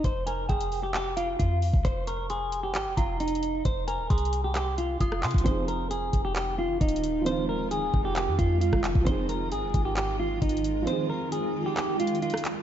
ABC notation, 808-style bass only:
X:1
M:4/4
L:1/16
Q:1/4=133
K:Fm
V:1 name="808-style bass" clef=bass
F,,,4 F,,,8 F,,3 C,, | F,,,8 A,,, F,,, F,,,6 | F,,,3 E,,, C,,8 F,,,2 C, C,, | F,,,6 F,,,6 E,,,4- |
E,,,6 F,,,3 F,, F,,3 F,,,2 C,, | F,,,4 A,,, F,,, A,,,6 A,,,4 | z16 |]